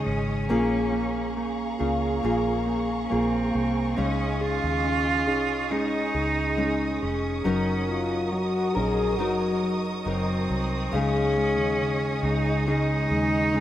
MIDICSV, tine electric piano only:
0, 0, Header, 1, 2, 480
1, 0, Start_track
1, 0, Key_signature, -5, "major"
1, 0, Tempo, 869565
1, 271, Time_signature, 4, 2, 24, 8
1, 7508, End_track
2, 0, Start_track
2, 0, Title_t, "Tine electric piano"
2, 0, Program_c, 0, 4
2, 0, Control_c, 0, 64, 127
2, 0, Note_on_c, 0, 49, 58
2, 0, Note_on_c, 0, 56, 55
2, 31, Note_off_c, 0, 56, 0
2, 31, Note_on_c, 0, 56, 53
2, 257, Note_off_c, 0, 49, 0
2, 264, Note_off_c, 0, 56, 0
2, 274, Note_on_c, 0, 58, 62
2, 278, Control_c, 0, 64, 0
2, 367, Control_c, 0, 64, 127
2, 504, Note_off_c, 0, 58, 0
2, 510, Note_on_c, 0, 58, 54
2, 750, Note_off_c, 0, 58, 0
2, 757, Note_on_c, 0, 58, 54
2, 987, Note_off_c, 0, 58, 0
2, 993, Note_on_c, 0, 58, 53
2, 1228, Note_off_c, 0, 58, 0
2, 1235, Note_on_c, 0, 58, 58
2, 1465, Note_off_c, 0, 58, 0
2, 1472, Note_on_c, 0, 58, 53
2, 1709, Note_off_c, 0, 58, 0
2, 1716, Note_on_c, 0, 58, 55
2, 1949, Note_off_c, 0, 58, 0
2, 1956, Note_on_c, 0, 58, 49
2, 2186, Note_off_c, 0, 58, 0
2, 2193, Note_on_c, 0, 61, 59
2, 2198, Control_c, 0, 64, 0
2, 2284, Control_c, 0, 64, 127
2, 2435, Note_on_c, 0, 68, 52
2, 2669, Note_off_c, 0, 61, 0
2, 2675, Note_on_c, 0, 61, 56
2, 2906, Note_off_c, 0, 68, 0
2, 2913, Note_on_c, 0, 68, 53
2, 3148, Note_off_c, 0, 61, 0
2, 3155, Note_on_c, 0, 61, 56
2, 3385, Note_off_c, 0, 68, 0
2, 3392, Note_on_c, 0, 68, 57
2, 3629, Note_off_c, 0, 61, 0
2, 3635, Note_on_c, 0, 61, 59
2, 3870, Note_off_c, 0, 68, 0
2, 3876, Note_on_c, 0, 68, 54
2, 4099, Note_off_c, 0, 61, 0
2, 4107, Note_off_c, 0, 68, 0
2, 4117, Control_c, 0, 64, 0
2, 4118, Note_on_c, 0, 54, 60
2, 4205, Control_c, 0, 64, 127
2, 4351, Note_off_c, 0, 54, 0
2, 4357, Note_on_c, 0, 54, 54
2, 4592, Note_off_c, 0, 54, 0
2, 4599, Note_on_c, 0, 54, 58
2, 4829, Note_off_c, 0, 54, 0
2, 4836, Note_on_c, 0, 54, 56
2, 5067, Note_off_c, 0, 54, 0
2, 5074, Note_on_c, 0, 54, 56
2, 5311, Note_off_c, 0, 54, 0
2, 5317, Note_on_c, 0, 54, 56
2, 5549, Note_off_c, 0, 54, 0
2, 5556, Note_on_c, 0, 54, 61
2, 5794, Note_off_c, 0, 54, 0
2, 5800, Note_on_c, 0, 54, 53
2, 6029, Note_off_c, 0, 54, 0
2, 6039, Control_c, 0, 64, 0
2, 6043, Note_on_c, 0, 49, 70
2, 6150, Control_c, 0, 64, 127
2, 6280, Note_on_c, 0, 56, 57
2, 6512, Note_off_c, 0, 49, 0
2, 6519, Note_on_c, 0, 49, 59
2, 6754, Note_off_c, 0, 56, 0
2, 6760, Note_on_c, 0, 56, 58
2, 6994, Note_off_c, 0, 49, 0
2, 7001, Note_on_c, 0, 49, 60
2, 7238, Note_off_c, 0, 56, 0
2, 7245, Note_on_c, 0, 56, 60
2, 7475, Note_off_c, 0, 49, 0
2, 7482, Note_on_c, 0, 49, 59
2, 7508, Note_off_c, 0, 49, 0
2, 7508, Note_off_c, 0, 56, 0
2, 7508, End_track
0, 0, End_of_file